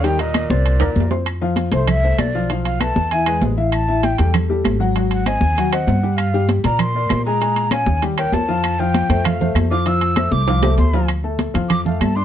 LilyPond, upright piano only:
\new Staff \with { instrumentName = "Upright piano" } { \time 4/4 \key c \mixolydian \tempo 4 = 196 <g g' g''>8 <bes bes' bes''>4 <c' c'' c'''>4 <bes bes' bes''>4 <c' c'' c'''>8 | \key f \major r8 <f f' f''>4 <a a' c''>4 <a a' c''>4 <f f' f''>8 | <f f' f''>4 <a a' b'>4 <e e' e''>8 <gis gis' b'>4 <e e' e''>8~ | <e e' e''>8 <e e' e''>4 <g g' a'>4 <g g' a'>4 <ges ges' ges''>8 |
<ges ges' ges''>4 <c' c'' ees''>4 <ges ges' ges''>8 <c' c'' ees''>4 <g g' g''>8~ | <g g' g''>8 <g g' g''>4 <bes bes' d''>4 <bes bes' d''>4 <aes aes' aes''>8 | <aes aes' aes''>4 <des' des'' f''>4 <g g' g''>8 <bes bes' des''>4 <f f' f''>8~ | <f f' f''>8 <f f' f''>4 <a a' c''>4 <a a' c''>4 <f f' f''>8 |
<f f' f''>4 <a a' c''>4 <f f' f''>8 <a a' c''>4 <f f' f''>8 | \key d \minor r8 <a a' a''>4 <f f' f''>4 <a a' a''>4 <d' d'' d'''>8 | }